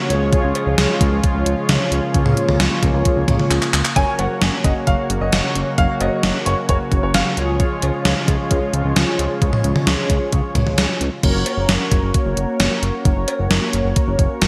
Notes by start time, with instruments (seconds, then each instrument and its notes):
Already playing: analog synth pad C#3
0.10 analog synth bass C#2, analog synth pad F3 G#3 F4, analog polysynth G#3 C#4 F4 G#4 C#5, closed hi-hat
0.33 kick, closed hi-hat
0.44 analog synth bass C#2
0.55 closed hi-hat, cowbell
0.67 analog synth bass C#2
0.78 analog synth bass C#2, snare, closed hi-hat
1.01 analog synth bass C#2, kick, closed hi-hat
1.12 analog synth bass C#2
1.24 kick, closed hi-hat
1.35 analog synth bass C#2
1.46 analog synth bass C#2, closed hi-hat
1.69 analog synth bass C#2, snare, closed hi-hat
1.92 analog synth bass C#2, analog synth pad A#3, closed hi-hat
2.14 analog synth bass C#2, kick, closed hi-hat
2.26 analog synth bass C#2, mid tom
2.37 closed hi-hat
2.49 analog synth bass C#2, mid tom
2.60 analog synth bass C#2, snare, closed hi-hat
2.83 analog synth bass C#2, kick, closed hi-hat
2.94 analog synth bass C#2
3.05 kick, closed hi-hat
3.17 analog synth bass C#2
3.28 analog synth bass C#2, kick, closed hi-hat, mid tom
3.39 mid tom
3.51 analog synth bass C#2, clap, closed hi-hat
3.62 clap
3.74 analog synth bass C#2, clap, closed hi-hat
3.85 clap
3.96 analog synth bass F#1, analog synth pad C#3 F#3 A#3 F#4, analog polysynth C#4 F#4 A#4 C#5, grand piano G#5, kick, closed hi-hat
4.19 analog synth bass F#1, grand piano F#5, closed hi-hat, cowbell
4.42 analog synth bass F#1, snare, closed hi-hat
4.64 analog synth bass F#1, grand piano D#5, kick, closed hi-hat
4.87 analog synth bass F#1, grand piano F5, kick, closed hi-hat
5.10 analog synth bass F#1, closed hi-hat
5.21 analog synth bass F#1, grand piano D#5
5.33 analog synth bass F#1, snare, closed hi-hat
5.55 analog synth bass F#1, closed hi-hat
5.78 analog synth bass F#1, grand piano F5, kick, closed hi-hat
6.01 analog synth bass F#1, grand piano D#5, closed hi-hat, cowbell
6.23 analog synth bass F#1, snare, closed hi-hat
6.46 analog synth bass F#1, grand piano C#5, closed hi-hat
6.69 analog synth bass F#1, grand piano C#5, kick, closed hi-hat
6.92 analog synth bass F#1, kick, closed hi-hat
7.03 analog synth bass F#1, grand piano C#5
7.14 analog synth bass F#1, grand piano F5, snare, closed hi-hat
7.37 analog synth bass C#2, analog synth pad F3 G#3 F4, analog polysynth C#4 F4 G#4 C#5, closed hi-hat
7.60 kick, closed hi-hat
7.82 analog synth bass C#2, closed hi-hat, cowbell
8.05 analog synth bass C#2, snare, closed hi-hat
8.28 analog synth bass C#2, kick, closed hi-hat
8.51 analog synth bass C#2, kick, closed hi-hat
8.74 analog synth bass C#2, closed hi-hat
8.85 analog synth bass C#2
8.96 analog synth bass C#2, snare, closed hi-hat
9.19 analog synth bass C#2, closed hi-hat
9.42 analog synth bass C#2, kick, closed hi-hat
9.53 mid tom
9.64 analog synth bass C#2, closed hi-hat
9.76 mid tom
9.87 analog synth bass C#2, snare, closed hi-hat
10.10 analog synth bass C#2, kick, closed hi-hat
10.32 analog synth bass C#2, kick, closed hi-hat
10.55 analog synth bass C#2, kick, closed hi-hat, mid tom
10.67 analog synth bass C#2, mid tom
10.78 analog synth bass C#2, snare, closed hi-hat
11.01 analog synth bass C#2, closed hi-hat
11.23 analog synth bass F#1, analog polysynth A#3 C#4 F#4 A#4 C#5, kick, closed hi-hat, crash
11.35 analog synth bass F#1
11.46 closed hi-hat, cowbell
11.57 analog synth bass F#1
11.69 analog synth bass F#1, snare, closed hi-hat
11.92 analog synth bass F#1, kick, closed hi-hat
12.03 analog synth bass F#1
12.14 kick, closed hi-hat
12.26 analog synth bass F#1
12.37 analog synth bass F#1, closed hi-hat
12.60 analog synth bass F#1, snare, closed hi-hat
12.82 analog synth bass F#1, closed hi-hat
13.05 analog synth bass F#1, kick, closed hi-hat
13.17 analog synth bass F#1
13.28 closed hi-hat, cowbell
13.39 analog synth bass F#1
13.51 analog synth bass F#1, snare, closed hi-hat
13.73 analog synth bass F#1, closed hi-hat
13.85 analog synth bass F#1
13.96 kick, closed hi-hat
14.08 analog synth bass F#1
14.19 analog synth bass F#1, kick, closed hi-hat
14.42 analog synth bass F#1, snare, closed hi-hat